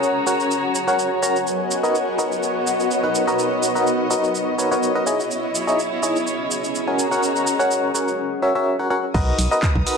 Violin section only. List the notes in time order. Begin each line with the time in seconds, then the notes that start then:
Already playing: F#4 C#5 A#5
1.46 B3 A#4 D#5
5.06 E4 C#5
6.98 F#4 A#5
9.15 B3 A#5 D#6